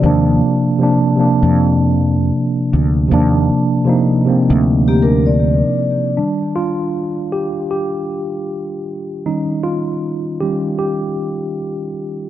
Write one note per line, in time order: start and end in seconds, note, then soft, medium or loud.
0.01 0.40 D#2 loud
0.01 0.65 C3 medium
0.01 0.66 F3 medium
0.01 0.66 A#3 medium
0.06 0.67 D4 loud
0.78 1.11 C3 medium
0.78 1.11 F3 medium
0.78 1.12 A#3 medium
0.83 1.13 D4 medium
1.16 2.35 C3 medium
1.16 2.36 F3 medium
1.16 2.37 A#3 medium
1.21 2.38 D4 medium
1.42 2.30 F2 medium
2.73 3.09 D2 medium
3.08 3.48 D#2 loud
3.08 3.72 C3 medium
3.08 3.73 F3 medium
3.08 3.74 A#3 medium
3.14 3.75 D4 loud
3.84 4.17 C3 medium
3.84 4.18 F3 medium
3.84 4.19 A#3 medium
3.89 4.20 D#4 medium
4.25 5.44 C3 medium
4.25 5.45 F3 medium
4.25 5.46 A#3 medium
4.30 5.46 C4 medium
4.50 5.61 D2 loud
4.88 5.03 A#3 medium
4.88 5.02 G4 medium
5.02 5.25 D4 medium
5.02 5.25 A#4 medium
5.26 6.14 D5 medium
6.17 6.73 D#3 soft
6.17 6.73 G3 soft
6.17 6.19 D4 medium
6.17 6.73 D4 medium
6.56 7.36 F4 medium
7.32 7.50 G4 medium
7.71 8.83 G4 medium
9.26 10.40 D#3 soft
9.26 10.41 G3 soft
9.26 10.41 C#4 soft
9.26 9.66 D#4 medium
9.63 10.37 F4 medium
10.41 10.76 D#3 soft
10.41 10.76 G3 soft
10.41 10.76 C#4 soft
10.41 10.77 G4 medium
10.79 11.91 G4 medium